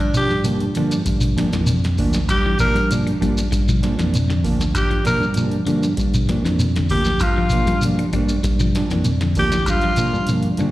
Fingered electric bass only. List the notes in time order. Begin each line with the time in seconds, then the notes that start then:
0.31 G2
0.76 G2
1.05 G2
1.53 F2
1.98 D2
2.28 G2
2.75 G2
3.21 G2
3.52 G2
3.98 F2
4.44 D2
4.74 G2
5.21 G2
5.66 G2
5.97 G2
6.43 F2
6.90 D2
7.20 G2
7.66 G2
8.12 G2
8.43 G2
8.90 F2
9.36 D2
9.66 G2
10.13 G2
10.58 G2